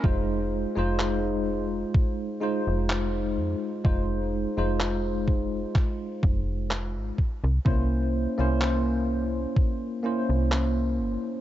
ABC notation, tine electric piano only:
X:1
M:4/4
L:1/16
Q:"Swing 16ths" 1/4=63
K:Fm
V:1 name="Tine electric piano"
[A,EFc]3 [A,EFc]6- [A,EFc] [A,EFc]6 | [A,EFc]3 [A,EFc] z12 | [B,D=Ec]3 [B,DEc]6- [B,DEc] [B,DEc]6 |]